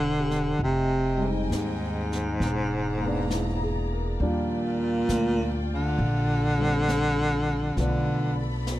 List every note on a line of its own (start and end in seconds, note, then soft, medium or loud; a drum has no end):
0.00 0.56 E1 medium
0.00 0.62 D3 loud
0.00 0.59 G3 soft
0.00 0.60 A3 soft
0.00 0.61 D4 soft
0.00 0.57 E4 medium
0.00 0.62 E4 medium
0.00 0.44 A4 soft
0.00 0.57 C5 medium
0.00 0.62 C5 soft
0.00 0.59 G5 medium
0.20 0.81 G4 soft
0.31 snare soft
0.59 1.46 F1 medium
0.59 2.39 D#5 medium
0.59 2.39 G#5 medium
0.59 brush sweep soft
0.63 1.30 C3 medium
0.63 2.40 G5 medium
1.17 2.38 G3 soft
1.21 2.41 G#3 soft
1.21 2.42 C4 soft
1.28 2.44 D#4 soft
1.50 2.36 D#2 medium
1.50 3.87 G#2 medium
1.50 snare soft
1.50 hi-hat pedal medium
2.12 snare soft
2.40 4.15 E1 medium
2.40 4.19 G#4 medium
2.40 8.79 D5 medium
2.40 4.19 A#5 medium
2.40 brush sweep soft
2.40 snare soft
2.98 4.18 G#3 soft
2.98 4.19 A#3 soft
3.05 4.21 B3 soft
3.05 4.20 D4 medium
3.30 3.86 E4 soft
3.30 snare soft
3.30 hi-hat pedal soft
3.63 4.07 G#4 soft
3.93 4.37 A#4 soft
4.20 5.05 D#2 medium
4.20 7.75 F3 soft
4.20 6.56 G3 soft
4.20 7.79 A#3 soft
4.20 7.79 D4 medium
4.20 7.76 F4 medium
4.20 7.76 G5 medium
4.20 brush sweep soft
4.26 5.67 A#2 medium
5.09 5.94 D2 medium
5.09 snare soft
5.09 hi-hat pedal medium
5.74 7.76 D3 loud
5.98 7.73 A#1 medium
5.98 brush sweep soft
6.57 7.77 G3 soft
6.57 7.79 C4 soft
6.88 snare soft
6.88 hi-hat pedal soft
7.77 8.79 B1 medium
7.77 8.46 D3 medium
7.77 8.79 F3 soft
7.77 8.79 A3 soft
7.77 8.79 B3 soft
7.77 8.79 A4 medium
7.77 8.79 B5 medium
7.77 brush sweep soft
7.77 snare soft
7.82 8.79 D4 soft
8.67 8.79 B2 medium
8.67 snare soft
8.67 hi-hat pedal medium